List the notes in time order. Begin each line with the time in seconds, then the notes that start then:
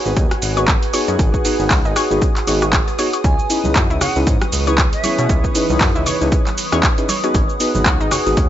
Already playing: F#4 G#4 B4 C#5 F#5 G#5 D#6
0.05 G#1 B3 D#4 F#4 G#4 B4, cabasa
0.17 D#2 C#4, kick, closed hi-hat, cabasa
0.31 cross-stick, closed hi-hat, cabasa
0.42 G#1, open hi-hat, cabasa
0.57 B3 D#4 F#4 G#4 B4 C#5, closed hi-hat, cabasa
0.68 kick, clap, closed hi-hat, cabasa
0.83 closed hi-hat, cabasa
0.93 B3 D#4 F#4 G#4 B4 C#5, open hi-hat, cabasa
1.08 F#2 C#4, closed hi-hat, cabasa
1.19 G#1 C#4, kick, closed hi-hat, cabasa
1.34 kick, cabasa
1.45 B3 D#4 F#4 G#4 B4, open hi-hat, cabasa
1.59 G#1 B3 D#4 F#4 G#4 B4, cabasa
1.70 C#2 F#4, kick, clap, open hi-hat, cabasa
1.85 G#1 D#4, cabasa
1.96 C#5, cross-stick, open hi-hat, cabasa
2.11 G#1 B3 D#4 F#4 G#4 B4, cabasa
2.22 C#4, kick, closed hi-hat, cabasa
2.36 clap, closed hi-hat, cabasa
2.47 G#1 B3 D#4 F#4 G#4 B4 C#5, open hi-hat, cabasa
2.62 C#5, cross-stick, closed hi-hat, cabasa
2.73 kick, clap, closed hi-hat, cabasa
2.88 G#3, closed hi-hat, cabasa
2.98 B3 D#4 F#4 G#4 C#5, open hi-hat, cabasa
3.13 C#5, closed hi-hat, cabasa
3.24 C#2 C#4 B4 G#5 C#6, kick, closed hi-hat, cabasa
3.39 cabasa
3.50 C#4 D#4 E4 G#4 B4, open hi-hat, cabasa
3.64 C#2 C#4 D#4 E4 G#4 B4, high conga, low conga, cabasa
3.76 F#2 F#4, kick, clap, closed hi-hat, cabasa
3.90 C#2 E3 E4, cabasa
4.01 C#5 F#5 D#6, cross-stick, open hi-hat, low conga, cabasa
4.16 C#2 C#4 D#4 E4 G#4 B4, cabasa
4.27 G#2 C#4, kick, closed hi-hat, cabasa
4.37 C#5, high conga
4.42 cross-stick, closed hi-hat, cabasa
4.52 C#2, open hi-hat, cabasa
4.67 C#4 D#4 E4 G#4 B4 C#5, closed hi-hat, cabasa
4.78 kick, clap, closed hi-hat, cabasa
4.93 E5, closed hi-hat, cabasa
5.04 B3 C#4 E4 G#4 B4 C#5, open hi-hat, high conga, cabasa
5.18 B2 C#4, closed hi-hat, cabasa
5.29 C#2 C#4, kick, closed hi-hat, cabasa
5.44 kick, cabasa
5.55 C#4 D#4 E4 G#4 B4, open hi-hat, cabasa
5.70 C#2 C#4 D#4 E4 G#4 B4, high conga, low conga, cabasa
5.81 F#2 F#4, kick, clap, open hi-hat, cabasa
5.95 C#2 E4, cabasa
6.06 C#5, open hi-hat, low conga, cabasa
6.21 C#2 C#4 D#4 E4 G#4 B4 C#5, cabasa
6.32 C#4, kick, closed hi-hat, cabasa
6.47 clap, closed hi-hat, high conga, cabasa
6.58 open hi-hat, cabasa
6.72 E2 C#4 D#4 E4 G#4 B4 C#5, cross-stick, closed hi-hat, cabasa
6.83 kick, clap, closed hi-hat, cabasa
6.98 C#4 D#4 E4 G#4 B4, closed hi-hat, cabasa
7.09 C#5 F#5 G#5, open hi-hat, high conga, cabasa
7.23 B3 C#4 D#4 F#4 G#4 B4, closed hi-hat, cabasa
7.28 G#4
7.35 G#1 C#4, kick, closed hi-hat, cabasa
7.49 F#4, cabasa
7.60 B3 D#4 F#4 G#4 B4, open hi-hat, cabasa
7.75 G#1 B3 D#4 F#4 G#4 B4, high conga, low conga, cabasa
7.86 C#2 F#4, kick, clap, closed hi-hat, cabasa
8.01 G#1 D#4, cabasa
8.11 C#5, cross-stick, open hi-hat, low conga, cabasa
8.26 G#1 B3 D#4 F#4 G#4 B4, cabasa
8.37 D#2 C#4, kick, closed hi-hat, cabasa